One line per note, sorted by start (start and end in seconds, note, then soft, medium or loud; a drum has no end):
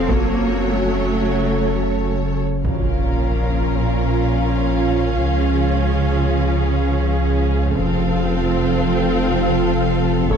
0.00 0.10 C4 medium
0.00 0.10 A4 medium
0.08 2.64 F#1 medium
0.08 2.65 C#3 medium
0.08 2.45 F#3 medium
0.08 0.73 A#3 medium
0.08 0.72 A#3 medium
0.08 2.64 C#4 medium
0.08 2.65 F#4 medium
0.08 2.40 A4 soft
0.08 2.41 C#5 medium
0.08 2.65 C#5 medium
0.08 taiko medium
0.72 2.32 A3 medium
0.72 2.32 A3 soft
2.64 5.22 A#1 medium
2.64 5.16 A#1 soft
2.64 5.16 A#2 soft
2.64 7.72 F3 medium
2.64 7.71 C#4 soft
2.64 7.72 C#4 medium
2.64 7.71 F4 soft
2.64 7.72 F4 medium
2.64 5.16 A#4 medium
2.64 5.16 A#4 soft
2.64 7.72 F5 soft
2.64 taiko soft
2.64 impact soft
3.61 taiko soft
5.19 7.76 C#2 medium
5.19 7.72 C#2 soft
5.19 7.72 C#3 soft
5.19 7.71 G#4 soft
5.19 7.76 G#4 medium
7.75 10.30 F1 medium
7.75 10.32 F1 medium
7.75 10.31 F2 medium
7.75 10.27 F3 medium
7.75 10.30 C4 medium
7.75 10.31 C4 medium
7.75 10.27 F4 medium
7.75 10.37 A4 medium
7.75 10.27 F5 medium
7.75 taiko medium
10.30 10.37 F#1 medium
10.30 10.37 F#1 soft
10.30 10.37 F#2 soft
10.30 10.37 C#3 medium
10.30 10.37 A3 medium
10.30 10.37 C#4 medium
10.30 10.37 F#4 medium
10.30 10.37 A4 soft
10.30 10.37 C#5 soft
10.30 taiko medium